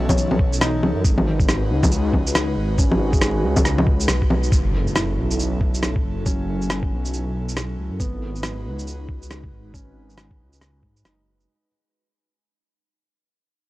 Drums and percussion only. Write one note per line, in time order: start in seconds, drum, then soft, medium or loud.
0.09 kick loud
0.09 low bongo medium
0.09 shaker medium
0.18 shaker medium
0.31 low bongo medium
0.39 kick loud
0.53 shaker medium
0.61 cross-stick loud
0.61 shaker medium
0.83 low bongo soft
1.05 kick loud
1.05 shaker medium
1.18 low bongo medium
1.40 kick loud
1.40 shaker soft
1.49 cross-stick loud
1.49 shaker soft
1.83 kick loud
1.83 low bongo medium
1.83 shaker medium
1.91 shaker medium
2.13 kick medium
2.13 low bongo soft
2.27 shaker medium
2.35 cross-stick loud
2.35 shaker medium
2.78 kick loud
2.78 shaker medium
2.92 low bongo medium
3.13 kick loud
3.13 shaker soft
3.21 cross-stick loud
3.21 shaker medium
3.56 kick loud
3.56 low bongo medium
3.56 shaker medium
3.65 cross-stick medium
3.65 shaker medium
3.78 low bongo medium
3.87 kick loud
4.00 shaker medium
4.08 cross-stick loud
4.08 shaker medium
4.22 kick medium
4.30 low bongo medium
4.43 shaker soft
4.52 kick loud
4.52 shaker medium
4.87 shaker soft
4.96 cross-stick loud
4.96 shaker medium
5.31 shaker medium
5.39 shaker medium
5.61 kick loud
5.74 shaker medium
5.83 cross-stick medium
5.83 shaker medium
5.96 kick loud
6.26 kick loud
6.26 shaker medium
6.62 shaker soft
6.70 cross-stick loud
6.70 shaker soft
6.83 kick loud
7.05 shaker medium
7.13 shaker medium
7.49 shaker medium
7.57 cross-stick loud
7.57 shaker medium
8.00 kick loud
8.00 shaker medium
8.36 shaker soft
8.43 cross-stick loud
8.43 shaker soft
8.79 shaker medium
8.87 shaker medium
9.09 kick loud
9.22 shaker medium
9.31 cross-stick medium
9.31 shaker soft
9.44 kick loud
9.74 kick loud
9.74 shaker medium
10.10 shaker soft
10.18 cross-stick medium
10.18 shaker soft
10.31 kick loud
10.53 shaker soft
10.61 cross-stick medium
10.61 shaker soft
10.83 kick medium
10.97 shaker medium
11.05 cross-stick loud
11.05 shaker soft
11.40 shaker soft